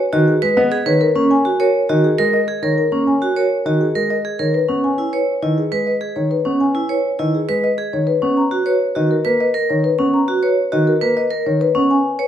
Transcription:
0.13 D#3 F#4 D#5
0.28 G#4
0.42 G#3 B4
0.57 B3 D#5
0.72 G#4
0.86 D#3 B4 C#5
1.01 A#4
1.15 A#3 C#4
1.30 C#4 G#5
1.45 F#4
1.60 A#4 C#5
1.89 D#3 F#4 D#5
2.04 G#4
2.18 G#3 A#4
2.33 D#5
2.48 G#4
2.62 D#3 A#4 C#5
2.78 A#4
2.92 A#3 C#4
3.07 C#4 G#5
3.22 F#4
3.37 A#4 C#5
3.66 D#3 F#4 D#5
3.81 G#4
3.95 G#3 A#4
4.10 D#5
4.25 G#4
4.39 D#3 A#4 C#5
4.54 B4
4.69 B3 C#4
4.84 C#4 G#5
4.98 E4
5.13 B4 C#5
5.42 D#3 E4 D#5
5.58 G#4
5.72 G#3 B4
5.87 D#5
6.01 G#4
6.16 D#3 C#5
6.31 B4
6.45 B3 C#4
6.60 C#4 G#5
6.75 E4
6.89 B4 C#5
7.19 D#3 E4 D#5
7.34 G#4
7.49 G#3 B4
7.64 D#5
7.78 G#4
7.93 D#3 C#5
8.07 B4
8.22 B3 C#4
8.37 A#5
8.51 F#4
8.66 B4 C#5
8.95 D#3 F#4 D#5
9.11 A#4
9.25 A#3 B4
9.40 D#5
9.54 A#4
9.70 D#3 C#5
9.84 B4
9.99 B3 C#4
10.14 A#5
10.28 F#4
10.43 B4 C#5
10.72 D#3 F#4 D#5
10.87 A#4
11.01 A#3 B4
11.17 D#5
11.31 A#4
11.46 D#3 C#5
11.61 B4
11.75 B3 C#4
11.90 G#5
12.19 B4 C#5

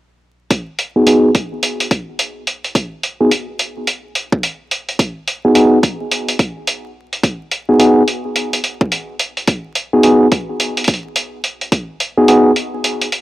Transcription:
0.51 kick, closed hi-hat
0.79 closed hi-hat
0.96 B3 D#4 F#4 G#4
1.07 B3 D#4 F#4 G#4, closed hi-hat
1.35 kick, closed hi-hat
1.63 closed hi-hat
1.80 closed hi-hat
1.91 kick, closed hi-hat
2.19 closed hi-hat
2.47 closed hi-hat
2.64 closed hi-hat
2.75 kick, closed hi-hat
3.03 closed hi-hat
3.21 B3 D#4 F#4 G#4
3.31 closed hi-hat
3.59 closed hi-hat
3.87 closed hi-hat
4.15 closed hi-hat
4.32 kick
4.43 closed hi-hat
4.71 closed hi-hat
4.89 closed hi-hat
4.99 kick, closed hi-hat
5.28 closed hi-hat
5.45 B3 D#4 F#4 G#4
5.55 B3 D#4 F#4 G#4, closed hi-hat
5.83 kick, closed hi-hat
6.11 closed hi-hat
6.29 closed hi-hat
6.39 kick, closed hi-hat
6.67 closed hi-hat
7.13 closed hi-hat
7.23 kick, closed hi-hat
7.51 closed hi-hat
7.69 B3 D#4 F#4 G#4
7.79 B3 D#4 F#4 G#4, closed hi-hat
8.08 closed hi-hat
8.36 closed hi-hat
8.53 closed hi-hat
8.64 closed hi-hat
8.81 kick
8.92 closed hi-hat
9.19 closed hi-hat
9.37 closed hi-hat
9.47 kick, closed hi-hat
9.75 closed hi-hat
9.93 B3 D#4 F#4 G#4
10.03 B3 D#4 F#4 G#4, closed hi-hat
10.32 kick, closed hi-hat
10.60 closed hi-hat
10.77 closed hi-hat
10.84 closed hi-hat
10.88 kick, closed hi-hat
10.94 closed hi-hat
11.16 closed hi-hat
11.44 closed hi-hat
11.61 closed hi-hat
11.72 kick, closed hi-hat
12.00 closed hi-hat
12.18 B3 D#4 F#4 G#4
12.28 B3 D#4 F#4 G#4, closed hi-hat
12.56 closed hi-hat
12.84 closed hi-hat
13.01 closed hi-hat
13.12 closed hi-hat

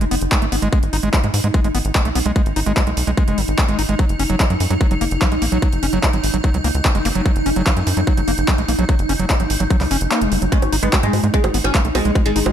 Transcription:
Already playing: D#4
0.01 F#1 G#3, closed hi-hat
0.11 F#1 B3, open hi-hat
0.21 F#1, closed hi-hat
0.32 G#3, kick, clap, closed hi-hat
0.42 G#1 A3, closed hi-hat
0.52 G#1 B3, open hi-hat
0.62 G#1 G#3, closed hi-hat
0.73 G#3, kick, closed hi-hat
0.83 G#1, closed hi-hat
0.93 G#1 D#4, open hi-hat
1.03 G#1 G#3, closed hi-hat
1.13 G#3, kick, clap, closed hi-hat
1.24 G#2 G#3, closed hi-hat
1.34 G#2, open hi-hat
1.44 G#2 G#3, closed hi-hat
1.54 G#3, kick, closed hi-hat
1.64 G#1 G#3, closed hi-hat
1.75 G#1 B3, open hi-hat
1.85 G#1, closed hi-hat
1.95 G#3, kick, clap, closed hi-hat
2.05 B1 A3, closed hi-hat
2.15 B1 B3, open hi-hat
2.26 B1 G#3, closed hi-hat
2.36 G#3, kick, closed hi-hat
2.46 G#1, closed hi-hat
2.56 G#1 D#4, open hi-hat
2.66 G#1 G#3, closed hi-hat
2.77 G#3, kick, clap, closed hi-hat
2.87 B1 G#3, closed hi-hat
2.97 B1, open hi-hat
3.07 B1 G#3, closed hi-hat
3.17 G#3, kick, closed hi-hat
3.28 F#1 G#3, closed hi-hat
3.38 G#1 F#3, open hi-hat
3.48 G#1, closed hi-hat
3.58 G#3, kick, clap, closed hi-hat
3.68 G#1 G#3, closed hi-hat
3.79 G#1 D#4, open hi-hat
3.89 G#1 G#3, closed hi-hat
3.99 F#3, kick, closed hi-hat
4.09 F#1, closed hi-hat
4.19 F#1 C#4, open hi-hat
4.30 F#1 F#3, closed hi-hat
4.40 F#3, kick, clap, closed hi-hat
4.50 F#2 F#3, closed hi-hat
4.60 F#2, open hi-hat
4.70 F#2 F#3, closed hi-hat
4.81 F#3, kick, closed hi-hat
4.91 F#1 F#3, closed hi-hat
5.01 F#1 A#3, open hi-hat
5.11 F#1, closed hi-hat
5.21 F#3, kick, clap, closed hi-hat
5.32 A#1 G#3, closed hi-hat
5.42 A#1 A#3, open hi-hat
5.52 A#1 F#3, closed hi-hat
5.62 F#3, kick, closed hi-hat
5.73 F#1, closed hi-hat
5.83 F#1 C#4, open hi-hat
5.93 F#1 F#3, closed hi-hat
6.03 F#3, kick, clap, closed hi-hat
6.13 G#1 F#3, closed hi-hat
6.24 G#1, open hi-hat
6.34 G#1 F#3, closed hi-hat
6.44 F#3, kick, closed hi-hat
6.54 C#2 F#3, closed hi-hat
6.64 C#2 A#3, open hi-hat
6.75 C#2, closed hi-hat
6.85 F#3, kick, clap, closed hi-hat
6.95 F#1 G#3, closed hi-hat
7.05 F#1 A#3, open hi-hat, zap
7.15 F#1 F#3, closed hi-hat
7.26 F#3, kick, closed hi-hat
7.36 F#1, closed hi-hat
7.46 F#1 C#4, open hi-hat
7.56 F#1 F#3, closed hi-hat
7.66 F#3, kick, clap, closed hi-hat
7.77 F#2 F#3, closed hi-hat
7.87 F#2, open hi-hat
7.97 F#2 F#3, closed hi-hat
8.07 F#3, kick, closed hi-hat
8.17 F#1 F#3, closed hi-hat
8.28 F#1 A#3, open hi-hat
8.38 F#1, closed hi-hat
8.48 F#3, kick, clap, closed hi-hat
8.58 A#1 G#3, closed hi-hat
8.68 A#1 A#3, open hi-hat
8.79 A#1 F#3, closed hi-hat
8.89 F#3, kick, closed hi-hat
8.99 F#1, closed hi-hat
9.09 F#1 C#4, open hi-hat
9.19 F#1 F#3, closed hi-hat
9.30 F#3, kick, clap, closed hi-hat
9.40 G#1 F#3, closed hi-hat
9.50 G#1, open hi-hat
9.60 G#1 F#3, closed hi-hat
9.70 F#3, kick, closed hi-hat
9.81 C#2 F#3, clap, open hi-hat
9.91 F#1 C#4, open hi-hat
10.01 F#1, closed hi-hat
10.11 A#3, clap, closed hi-hat
10.21 F#1 G#3, closed hi-hat
10.32 F#1 F#3, open hi-hat
10.42 F#1 F#3, closed hi-hat
10.52 G#3 C#4 D#4, kick, closed hi-hat
10.62 G#1, closed hi-hat, high bongo
10.73 G#1 D#4, open hi-hat
10.83 G#1 G#3 B3, closed hi-hat
10.93 G#3, kick, clap, closed hi-hat, high bongo
11.03 G#2 G#3, closed hi-hat
11.13 G#2 G#3, open hi-hat, high bongo
11.24 G#2 G#3, closed hi-hat
11.34 G#3, kick, closed hi-hat
11.44 G#1 G#3, closed hi-hat, high bongo
11.54 G#1 B3, open hi-hat
11.64 G#1 C#4, closed hi-hat, high bongo
11.75 G#3, kick, clap, closed hi-hat
11.85 B1 A3, closed hi-hat
11.95 B1 G#3 B3, open hi-hat, high bongo
12.05 B1 G#3, closed hi-hat
12.15 G#3, kick, closed hi-hat, high bongo
12.26 G#1 G#3, closed hi-hat
12.36 G#1 D#4, open hi-hat
12.46 G#1 G#3, closed hi-hat, high bongo

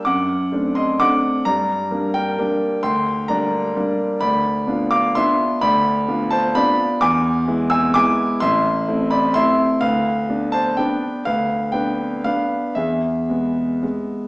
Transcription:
0.05 F#2 F#5 D6
0.52 A3 C4 D4
0.75 D#5 C6
1.00 A3 C4 D4 F#5 D6
1.45 G2 D5 A#5
1.91 G3 A#3 D4
2.14 A#4 G5
2.38 G3 A#3 D4
2.83 D2 G5 C6
3.28 G3 A#3 D4 D5 A#5
3.76 G3 A#3 D4
4.21 D2 D5 B5
4.67 B3 D4 F4
4.91 F5 D6
5.15 B3 D4 F4 E5 C6
5.61 D2 D5 B5
6.08 B3 D4 F4
6.31 C5 A5
6.55 B3 D4 F4 D5 B5
7.01 E2 G#5 D6
7.47 G#3 B3 E4
7.70 G#5 E6
7.94 G#3 B3 E4 G#5 D6
8.40 A1 E5 C6
8.88 A3 C4 E4
9.11 D5 B5
9.34 A3 C4 E4 E5 C6
9.81 D2 B4 F5
10.29 B3 D4
10.52 C5 A5
10.77 B3 D4 B4 G5
11.25 D2 B4 F5
11.72 B3 D4 B4 G5
12.24 B3 D4 B4 F5
12.75 E2 G#4 E5
13.29 G#3 B3
13.83 G#3 B3

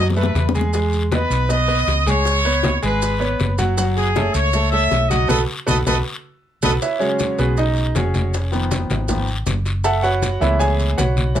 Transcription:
Already playing: F#2
0.10 low bongo
0.16 A3 A4 B4, high conga, maracas
0.23 low bongo
0.35 E2, low bongo, high conga, short guiro, maracas
0.49 low bongo
0.55 G#3 G#4 G#5, high conga, short guiro, maracas
0.61 low bongo
0.73 G#3 G#4 G#5, high bongo, high conga, long guiro, maracas
0.93 high bongo, high conga, maracas
1.12 B3 B4 D#5, high bongo, high conga, short guiro, maracas
1.30 B1, high bongo, high conga, short guiro, maracas
1.49 B3 B4 D#5, high bongo, high conga, long guiro, maracas
1.68 B3 B4 D#5, high bongo, high conga, maracas
1.87 C#2, high bongo, low bongo, high conga, short guiro, maracas
2.06 G#3 G#4 C#5 G#5, high conga, short guiro, maracas
2.25 high bongo, long guiro, maracas
2.45 B3 B4 C#5, high bongo, high conga, maracas
2.63 high bongo, high conga, short guiro, maracas
2.82 G#1 G#3 G#4 B4 G#5, high bongo, high conga, short guiro, maracas
3.02 high bongo, high conga, long guiro, maracas
3.20 B3 B4 C#5, high bongo, high conga, maracas
3.39 F#1, high bongo, low bongo, high conga, short guiro, maracas
3.58 F#3 F#4 F#5, high conga, short guiro, maracas
3.77 F#3 F#4 F#5, high bongo, long guiro, maracas
3.97 G#4, high bongo, high conga, maracas
4.15 A3 A4 C#5, high bongo, high conga, short guiro, maracas
4.34 C#2 C#5, high bongo, high conga, short guiro, maracas
4.53 A3 A4 C#5, high bongo, high conga, long guiro, maracas
4.71 A3 A4 C#5 E5, high bongo, high conga, maracas
4.91 B1, high bongo, low bongo, high conga, short guiro, maracas
5.09 F#3 F#4 D#5 F#5, high conga, short guiro, maracas
5.28 B1 F#4 A4 B4 D#5, low bongo, high conga, long guiro, maracas
5.66 B1 F#4 A4 B4 D#5, low bongo, high conga, long guiro, maracas
5.87 B1 F#4 A4 B4 D#5, low bongo, high conga, long guiro, maracas
6.62 B1 F#4 A4 B4 D#5, low bongo, high conga, long guiro, maracas
6.82 E4 B4 C#5 E5, high bongo, high conga, long guiro, maracas
6.99 C#3 F#3 G#3 C#4 F#4 G#4 C#5, high bongo, high conga, maracas
7.19 high bongo, high conga, short guiro, maracas
7.38 B1 B3 F#4 G#4 B4, high bongo, short guiro, maracas
7.57 D#4 D#5, high bongo, high conga, long guiro, maracas
7.76 high conga, maracas
7.95 F1 C#4 F#4 G#4 C#5, high bongo, low bongo, high conga, short guiro, maracas
8.14 high bongo, high conga, short guiro, maracas
8.34 high bongo, long guiro, maracas
8.52 D#3 F3 B3, high bongo, high conga, maracas
8.71 high bongo, high conga, short guiro, maracas
8.90 G#1, high bongo, high conga, short guiro, maracas
9.08 D#3 F3 B3, high bongo, high conga, low conga, long guiro, maracas
9.28 high conga, maracas
9.46 F#1, high bongo, low bongo, high conga, short guiro, maracas
9.65 high bongo, short guiro, maracas
9.84 A4 E5 F#5 A5, high bongo, high conga, long guiro, maracas
10.03 F#4 B4 C#5 F#5, high bongo, high conga, maracas
10.22 high bongo, high conga, short guiro, maracas
10.40 C#2 E3 G#3 A3 B3 E4 B4 C#5 E5, high bongo, short guiro, maracas
10.59 G#4 C#5 E5 G#5, high bongo, high conga, long guiro, maracas
10.79 high conga, maracas
10.98 B1 F#4 B4 C#5 F#5, high bongo, low bongo, high conga, short guiro, maracas
11.17 high bongo, high conga, short guiro, maracas
11.35 E3 A3 C#4, high bongo, high conga, long guiro, maracas

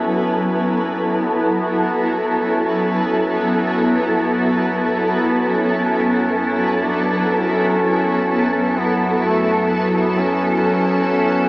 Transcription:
Already playing: F#2 F#3 B3 C#4 E4 A4
0.94 A4
1.25 B3
1.70 B3
2.41 C#4
2.64 C#4
4.99 B3
5.47 C#4
6.85 D4
7.35 C#4
8.79 B3
9.25 A3
9.97 B3
10.19 C#4

